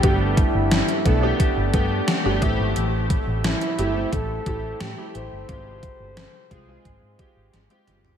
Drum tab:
HH |x-x-xxx-x-x-x-x-|x-x-xxx-x-x-x-x-|x-x-x-x-x-x-xxx-|
SD |----o-------o---|----o-------o---|----o-------o---|
T2 |----------------|----------------|--------------o-|
FT |----------------|----------------|---------------o|
BD |o-o---o-o-o---o-|--o-----o-o-----|o-o---o-o-o-----|